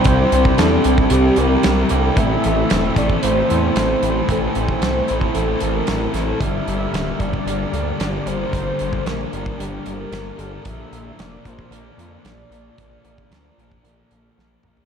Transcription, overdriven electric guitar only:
X:1
M:4/4
L:1/8
Q:1/4=113
K:Gdor
V:1 name="Overdriven electric guitar"
[C,G,CEG] [CEG] [G,CEG] [CEG] [C,G,CEG] [CEG]2 [CEG] | [A,,E,CEA] [CEA] [E,CEA] [CEA] [A,,E,CEA] [CEA]2 [CEA] | [A,,E,CEA] [CEA] [E,CEA] [CEA] [A,,E,CEA] [CEA]2 [CEA] | [G,,D,G,B,DB] [G,B,DB] [G,B,DB] [G,B,DB] [G,,D,G,B,DB] [G,B,DB]2 [G,B,DB] |
[G,,D,G,B,DB] [G,B,DB] [G,B,DB] [G,B,DB] [G,,D,G,B,DB] [G,B,DB]2 [G,B,DB] | [B,,D,F,B,DB] [F,B,DB] [F,B,DB] [F,B,DB] [B,,D,F,B,DB] [F,B,DB]2 [F,B,DB] | [B,,D,F,B,DB] [F,B,DB] [F,B,DB] [F,B,DB] [B,,D,F,B,DB] [F,B,DB]2 [F,B,DB] |]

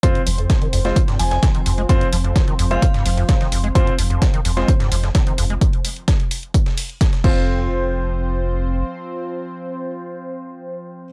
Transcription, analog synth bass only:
X:1
M:4/4
L:1/8
Q:1/4=129
K:Cm
V:1 name="Analog synth bass" clef=bass
z F,,, z F,,, z F,,, z F,,, | z F,,, z F,,, z F,,, z F,,, | z F,,, z F,,, z F,,, z F,,, | z6 z F,,,- |
F,,,6 z2 | z8 |]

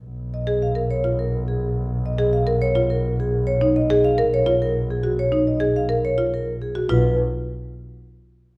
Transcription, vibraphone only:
X:1
M:3/4
L:1/16
Q:1/4=105
K:Blyd
V:1 name="Vibraphone"
z2 d z e z c z A z G z | z2 d z e z c z A z G z | c z d z e z c z A z G z | c z d z e z c z A z G z |
B2 z8 z2 |]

